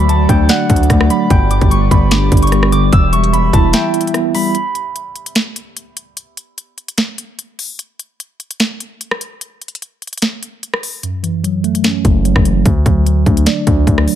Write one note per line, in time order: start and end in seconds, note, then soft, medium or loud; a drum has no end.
0.00 0.27 D2 loud
0.00 0.70 D3 medium
0.00 0.90 F#3 medium
0.00 1.29 A3 medium
0.00 1.27 F#4 medium
0.00 2.89 D5 medium
0.00 1.10 B5 medium
0.00 0.90 D6 loud
0.09 0.89 A3 medium
0.09 1.54 A5 medium
0.09 closed hi-hat medium
0.29 0.48 D2 loud
0.29 0.68 D4 loud
0.29 0.55 G5 medium
0.29 kick loud
0.29 closed hi-hat medium
0.49 1.30 D5 medium
0.49 1.36 F#5 medium
0.49 snare loud
0.49 closed hi-hat medium
0.69 0.89 D2 loud
0.69 1.30 D4 medium
0.69 kick loud
0.69 closed hi-hat medium
0.76 closed hi-hat medium
0.83 closed hi-hat soft
0.90 1.09 D2 loud
0.90 1.30 A3 loud
0.90 kick medium
0.90 cross-stick medium
0.90 closed hi-hat medium
1.01 cross-stick loud
1.10 1.30 F#3 medium
1.10 1.91 B5 medium
1.10 closed hi-hat medium
1.30 1.60 G1 loud
1.30 2.32 G2 medium
1.30 4.51 B3 medium
1.30 4.51 G4 medium
1.30 2.86 G5 medium
1.30 kick loud
1.30 closed hi-hat medium
1.51 2.52 D3 medium
1.51 1.77 D6 medium
1.51 closed hi-hat medium
1.61 1.90 G1 loud
1.61 kick loud
1.61 closed hi-hat soft
1.71 2.51 G3 medium
1.71 2.17 C#6 medium
1.71 closed hi-hat medium
1.91 2.30 G1 loud
1.91 2.30 B3 loud
1.91 3.26 B5 medium
1.91 kick medium
1.91 closed hi-hat medium
2.11 2.93 D4 medium
2.11 2.48 D6 medium
2.11 snare loud
2.11 closed hi-hat medium
2.32 2.90 G1 loud
2.32 2.92 B3 medium
2.32 kick loud
2.32 closed hi-hat medium
2.37 closed hi-hat medium
2.42 2.78 C#6 medium
2.42 closed hi-hat medium
2.47 closed hi-hat soft
2.52 2.92 G3 loud
2.52 cross-stick medium
2.52 closed hi-hat medium
2.63 cross-stick loud
2.72 2.93 D3 medium
2.72 3.19 D6 medium
2.72 closed hi-hat medium
2.92 3.51 E1 loud
2.92 3.94 E3 medium
2.92 4.53 E5 medium
2.92 4.06 E6 loud
2.92 kick loud
2.92 closed hi-hat medium
3.13 4.14 G3 medium
3.13 4.39 C#6 medium
3.13 closed hi-hat medium
3.24 closed hi-hat soft
3.33 4.13 B3 medium
3.33 4.34 B5 medium
3.33 closed hi-hat medium
3.53 3.73 E1 loud
3.53 3.93 E4 loud
3.53 4.98 A5 medium
3.53 kick medium
3.53 closed hi-hat medium
3.73 4.55 E5 medium
3.73 5.29 G5 medium
3.73 snare loud
3.73 closed hi-hat medium
3.94 4.55 E4 medium
3.94 closed hi-hat medium
4.01 closed hi-hat medium
4.07 closed hi-hat medium
4.14 4.55 B3 medium
4.14 cross-stick medium
4.14 closed hi-hat medium
4.35 4.55 G3 medium
4.35 5.70 B5 medium
4.35 open hi-hat medium
4.55 closed hi-hat medium
4.75 closed hi-hat medium
4.96 closed hi-hat medium
5.16 closed hi-hat soft
5.26 closed hi-hat medium
5.35 snare loud
5.35 closed hi-hat medium
5.56 closed hi-hat medium
5.77 closed hi-hat medium
5.97 closed hi-hat medium
6.17 closed hi-hat medium
6.37 closed hi-hat medium
6.58 closed hi-hat medium
6.78 closed hi-hat soft
6.88 closed hi-hat medium
6.98 snare loud
6.98 closed hi-hat medium
7.18 closed hi-hat medium
7.39 closed hi-hat medium
7.59 open hi-hat medium
7.79 closed hi-hat medium
7.99 closed hi-hat medium
8.20 closed hi-hat medium
8.40 closed hi-hat soft
8.51 closed hi-hat medium
8.60 snare loud
8.60 closed hi-hat medium
8.80 closed hi-hat medium
9.01 closed hi-hat medium
9.11 cross-stick loud
9.21 closed hi-hat medium
9.41 closed hi-hat medium
9.62 closed hi-hat soft
9.68 closed hi-hat medium
9.75 closed hi-hat medium
9.82 closed hi-hat medium
10.02 closed hi-hat soft
10.07 closed hi-hat medium
10.13 closed hi-hat medium
10.18 closed hi-hat medium
10.22 snare loud
10.22 closed hi-hat medium
10.43 closed hi-hat medium
10.63 closed hi-hat medium
10.74 cross-stick loud
10.83 open hi-hat medium
11.03 12.05 F#2 medium
11.03 closed hi-hat medium
11.23 12.25 E3 medium
11.23 closed hi-hat medium
11.44 12.24 F#3 medium
11.44 closed hi-hat medium
11.64 12.04 A3 loud
11.64 closed hi-hat soft
11.75 closed hi-hat medium
11.84 12.65 C#4 medium
11.84 snare loud
11.84 closed hi-hat medium
12.05 12.35 F#1 loud
12.05 12.66 A3 medium
12.05 kick loud
12.05 closed hi-hat medium
12.25 12.65 F#3 medium
12.25 closed hi-hat medium
12.36 12.64 F#1 loud
12.36 kick medium
12.36 cross-stick loud
12.45 12.66 E3 medium
12.45 closed hi-hat medium
12.66 12.85 D2 loud
12.66 13.67 D3 medium
12.66 kick loud
12.66 closed hi-hat medium
12.86 13.25 D2 loud
12.86 13.87 F#3 medium
12.86 kick loud
12.86 closed hi-hat medium
13.06 13.86 A3 medium
13.06 closed hi-hat medium
13.26 13.46 D2 loud
13.26 13.65 D4 loud
13.26 kick medium
13.26 closed hi-hat soft
13.37 closed hi-hat medium
13.46 14.15 D5 medium
13.46 snare loud
13.46 closed hi-hat medium
13.66 13.86 D2 loud
13.66 14.15 D4 medium
13.66 kick loud
13.66 closed hi-hat medium
13.87 14.07 D2 loud
13.87 14.15 A3 medium
13.87 kick medium
13.87 closed hi-hat medium
13.98 cross-stick loud
14.07 14.15 F#3 medium
14.07 open hi-hat medium